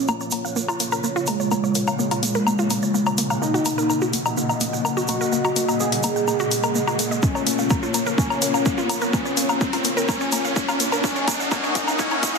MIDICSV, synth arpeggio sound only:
0, 0, Header, 1, 2, 480
1, 0, Start_track
1, 0, Key_signature, -5, "minor"
1, 0, Tempo, 476190
1, 1527, Time_signature, 4, 2, 24, 8
1, 12481, End_track
2, 0, Start_track
2, 0, Title_t, "Synth arpeggio sound"
2, 0, Program_c, 0, 84
2, 86, Note_on_c, 0, 58, 79
2, 136, Note_off_c, 0, 58, 0
2, 210, Note_on_c, 0, 73, 72
2, 257, Note_off_c, 0, 73, 0
2, 326, Note_on_c, 0, 58, 74
2, 444, Note_off_c, 0, 58, 0
2, 449, Note_on_c, 0, 77, 74
2, 497, Note_off_c, 0, 77, 0
2, 566, Note_on_c, 0, 58, 86
2, 649, Note_off_c, 0, 58, 0
2, 690, Note_on_c, 0, 65, 102
2, 768, Note_off_c, 0, 65, 0
2, 805, Note_on_c, 0, 58, 77
2, 856, Note_off_c, 0, 58, 0
2, 929, Note_on_c, 0, 70, 99
2, 1008, Note_off_c, 0, 70, 0
2, 1045, Note_on_c, 0, 58, 80
2, 1129, Note_off_c, 0, 58, 0
2, 1169, Note_on_c, 0, 65, 101
2, 1248, Note_off_c, 0, 65, 0
2, 1286, Note_on_c, 0, 58, 80
2, 1404, Note_off_c, 0, 58, 0
2, 1409, Note_on_c, 0, 73, 75
2, 1457, Note_off_c, 0, 73, 0
2, 1527, Note_on_c, 0, 58, 79
2, 1576, Note_off_c, 0, 58, 0
2, 1650, Note_on_c, 0, 73, 75
2, 1697, Note_off_c, 0, 73, 0
2, 1766, Note_on_c, 0, 58, 78
2, 1884, Note_off_c, 0, 58, 0
2, 1890, Note_on_c, 0, 77, 80
2, 1937, Note_off_c, 0, 77, 0
2, 2006, Note_on_c, 0, 58, 81
2, 2089, Note_off_c, 0, 58, 0
2, 2130, Note_on_c, 0, 65, 98
2, 2208, Note_off_c, 0, 65, 0
2, 2246, Note_on_c, 0, 58, 75
2, 2296, Note_off_c, 0, 58, 0
2, 2369, Note_on_c, 0, 70, 100
2, 2448, Note_off_c, 0, 70, 0
2, 2486, Note_on_c, 0, 58, 80
2, 2569, Note_off_c, 0, 58, 0
2, 2610, Note_on_c, 0, 65, 104
2, 2688, Note_off_c, 0, 65, 0
2, 2727, Note_on_c, 0, 58, 78
2, 2844, Note_off_c, 0, 58, 0
2, 2850, Note_on_c, 0, 73, 79
2, 2897, Note_off_c, 0, 73, 0
2, 2966, Note_on_c, 0, 58, 81
2, 3016, Note_off_c, 0, 58, 0
2, 3090, Note_on_c, 0, 73, 78
2, 3137, Note_off_c, 0, 73, 0
2, 3206, Note_on_c, 0, 58, 77
2, 3324, Note_off_c, 0, 58, 0
2, 3329, Note_on_c, 0, 77, 77
2, 3376, Note_off_c, 0, 77, 0
2, 3446, Note_on_c, 0, 58, 81
2, 3529, Note_off_c, 0, 58, 0
2, 3570, Note_on_c, 0, 66, 102
2, 3648, Note_off_c, 0, 66, 0
2, 3686, Note_on_c, 0, 58, 78
2, 3736, Note_off_c, 0, 58, 0
2, 3810, Note_on_c, 0, 70, 103
2, 3888, Note_off_c, 0, 70, 0
2, 3926, Note_on_c, 0, 58, 75
2, 4009, Note_off_c, 0, 58, 0
2, 4050, Note_on_c, 0, 66, 95
2, 4128, Note_off_c, 0, 66, 0
2, 4166, Note_on_c, 0, 58, 74
2, 4284, Note_off_c, 0, 58, 0
2, 4290, Note_on_c, 0, 75, 77
2, 4337, Note_off_c, 0, 75, 0
2, 4407, Note_on_c, 0, 58, 85
2, 4457, Note_off_c, 0, 58, 0
2, 4530, Note_on_c, 0, 75, 80
2, 4577, Note_off_c, 0, 75, 0
2, 4646, Note_on_c, 0, 58, 78
2, 4764, Note_off_c, 0, 58, 0
2, 4770, Note_on_c, 0, 78, 76
2, 4817, Note_off_c, 0, 78, 0
2, 4886, Note_on_c, 0, 58, 82
2, 4969, Note_off_c, 0, 58, 0
2, 5009, Note_on_c, 0, 66, 105
2, 5088, Note_off_c, 0, 66, 0
2, 5127, Note_on_c, 0, 58, 79
2, 5177, Note_off_c, 0, 58, 0
2, 5250, Note_on_c, 0, 70, 100
2, 5328, Note_off_c, 0, 70, 0
2, 5366, Note_on_c, 0, 58, 82
2, 5449, Note_off_c, 0, 58, 0
2, 5489, Note_on_c, 0, 66, 100
2, 5567, Note_off_c, 0, 66, 0
2, 5606, Note_on_c, 0, 58, 77
2, 5724, Note_off_c, 0, 58, 0
2, 5730, Note_on_c, 0, 75, 75
2, 5777, Note_off_c, 0, 75, 0
2, 5847, Note_on_c, 0, 58, 79
2, 5897, Note_off_c, 0, 58, 0
2, 5971, Note_on_c, 0, 75, 74
2, 6017, Note_off_c, 0, 75, 0
2, 6087, Note_on_c, 0, 58, 75
2, 6204, Note_off_c, 0, 58, 0
2, 6210, Note_on_c, 0, 78, 75
2, 6257, Note_off_c, 0, 78, 0
2, 6327, Note_on_c, 0, 58, 83
2, 6409, Note_off_c, 0, 58, 0
2, 6450, Note_on_c, 0, 66, 104
2, 6528, Note_off_c, 0, 66, 0
2, 6566, Note_on_c, 0, 58, 77
2, 6616, Note_off_c, 0, 58, 0
2, 6689, Note_on_c, 0, 70, 96
2, 6767, Note_off_c, 0, 70, 0
2, 6807, Note_on_c, 0, 58, 82
2, 6889, Note_off_c, 0, 58, 0
2, 6930, Note_on_c, 0, 66, 101
2, 7008, Note_off_c, 0, 66, 0
2, 7046, Note_on_c, 0, 58, 79
2, 7164, Note_off_c, 0, 58, 0
2, 7169, Note_on_c, 0, 75, 76
2, 7217, Note_off_c, 0, 75, 0
2, 7286, Note_on_c, 0, 58, 76
2, 7336, Note_off_c, 0, 58, 0
2, 7410, Note_on_c, 0, 73, 73
2, 7457, Note_off_c, 0, 73, 0
2, 7526, Note_on_c, 0, 58, 73
2, 7644, Note_off_c, 0, 58, 0
2, 7650, Note_on_c, 0, 77, 73
2, 7697, Note_off_c, 0, 77, 0
2, 7767, Note_on_c, 0, 58, 72
2, 7849, Note_off_c, 0, 58, 0
2, 7891, Note_on_c, 0, 65, 92
2, 7968, Note_off_c, 0, 65, 0
2, 8007, Note_on_c, 0, 58, 70
2, 8056, Note_off_c, 0, 58, 0
2, 8129, Note_on_c, 0, 70, 93
2, 8208, Note_off_c, 0, 70, 0
2, 8247, Note_on_c, 0, 58, 80
2, 8297, Note_off_c, 0, 58, 0
2, 8370, Note_on_c, 0, 73, 73
2, 8417, Note_off_c, 0, 73, 0
2, 8486, Note_on_c, 0, 58, 75
2, 8604, Note_off_c, 0, 58, 0
2, 8609, Note_on_c, 0, 77, 71
2, 8656, Note_off_c, 0, 77, 0
2, 8726, Note_on_c, 0, 58, 76
2, 8809, Note_off_c, 0, 58, 0
2, 8849, Note_on_c, 0, 65, 98
2, 8927, Note_off_c, 0, 65, 0
2, 8965, Note_on_c, 0, 58, 77
2, 9015, Note_off_c, 0, 58, 0
2, 9089, Note_on_c, 0, 70, 93
2, 9167, Note_off_c, 0, 70, 0
2, 9206, Note_on_c, 0, 58, 76
2, 9256, Note_off_c, 0, 58, 0
2, 9329, Note_on_c, 0, 73, 71
2, 9377, Note_off_c, 0, 73, 0
2, 9446, Note_on_c, 0, 58, 73
2, 9564, Note_off_c, 0, 58, 0
2, 9569, Note_on_c, 0, 77, 74
2, 9617, Note_off_c, 0, 77, 0
2, 9685, Note_on_c, 0, 58, 74
2, 9769, Note_off_c, 0, 58, 0
2, 9810, Note_on_c, 0, 65, 90
2, 9888, Note_off_c, 0, 65, 0
2, 9926, Note_on_c, 0, 58, 70
2, 9976, Note_off_c, 0, 58, 0
2, 10049, Note_on_c, 0, 70, 95
2, 10127, Note_off_c, 0, 70, 0
2, 10166, Note_on_c, 0, 58, 79
2, 10216, Note_off_c, 0, 58, 0
2, 10291, Note_on_c, 0, 73, 77
2, 10337, Note_off_c, 0, 73, 0
2, 10406, Note_on_c, 0, 58, 77
2, 10524, Note_off_c, 0, 58, 0
2, 10530, Note_on_c, 0, 77, 75
2, 10577, Note_off_c, 0, 77, 0
2, 10645, Note_on_c, 0, 58, 78
2, 10729, Note_off_c, 0, 58, 0
2, 10770, Note_on_c, 0, 65, 101
2, 10848, Note_off_c, 0, 65, 0
2, 10887, Note_on_c, 0, 58, 78
2, 10936, Note_off_c, 0, 58, 0
2, 11011, Note_on_c, 0, 70, 99
2, 11088, Note_off_c, 0, 70, 0
2, 11127, Note_on_c, 0, 58, 82
2, 11176, Note_off_c, 0, 58, 0
2, 11251, Note_on_c, 0, 73, 75
2, 11297, Note_off_c, 0, 73, 0
2, 11367, Note_on_c, 0, 58, 78
2, 11485, Note_off_c, 0, 58, 0
2, 11491, Note_on_c, 0, 77, 77
2, 11537, Note_off_c, 0, 77, 0
2, 11607, Note_on_c, 0, 58, 77
2, 11657, Note_off_c, 0, 58, 0
2, 11731, Note_on_c, 0, 73, 76
2, 11778, Note_off_c, 0, 73, 0
2, 11847, Note_on_c, 0, 58, 76
2, 11965, Note_off_c, 0, 58, 0
2, 11972, Note_on_c, 0, 77, 75
2, 12018, Note_off_c, 0, 77, 0
2, 12087, Note_on_c, 0, 58, 86
2, 12137, Note_off_c, 0, 58, 0
2, 12212, Note_on_c, 0, 73, 78
2, 12258, Note_off_c, 0, 73, 0
2, 12327, Note_on_c, 0, 58, 79
2, 12444, Note_off_c, 0, 58, 0
2, 12481, End_track
0, 0, End_of_file